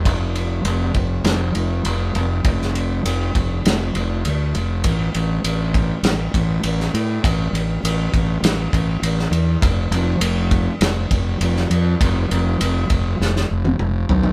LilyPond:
<<
  \new Staff \with { instrumentName = "Fingered electric bass" } { \clef bass \time 4/4 \key c \major \tempo 4 = 100 f,,4 f,,8 f,,8 f,,8 f,,8 f,,8 f,,8 | f,,4 f,,8 f,,8 f,,8 f,,8 d,8 f,,8 | a,,8 a,,8 a,,4 a,,8 a,,8 a,,8 a,8 | a,,8 a,,8 a,,8 a,,8 a,,8 a,,8 a,,8 e,8 |
f,,8 f,,8 f,,4 f,,8 f,,8 f,,8 f,8 | f,,8 f,,8 f,,8 f,,8 f,,8 f,,8 f,,8 b,,8 | }
  \new DrumStaff \with { instrumentName = "Drums" } \drummode { \time 4/4 <bd cymr>8 cymr8 cymr8 <bd cymr>8 <cymr sn>8 cymr8 cymr8 cymr8 | <bd cymr>16 sn16 cymr8 cymr8 <bd cymr>8 <cymr sn>8 cymr8 cymr8 cymr8 | <bd cymr>8 cymr8 cymr8 <bd cymr>8 <cymr sn>8 <bd cymr>8 cymr16 sn16 cymr8 | <bd cymr>8 cymr8 cymr8 <bd cymr>8 <cymr sn>8 <bd cymr>8 cymr16 sn16 cymr8 |
<bd cymr>8 cymr8 cymr8 <bd cymr>8 <cymr sn>8 <bd cymr>8 cymr16 sn16 cymr8 | <bd cymr>8 cymr8 cymr8 <bd cymr>8 sn16 sn8 tommh16 toml8 tomfh16 tomfh16 | }
>>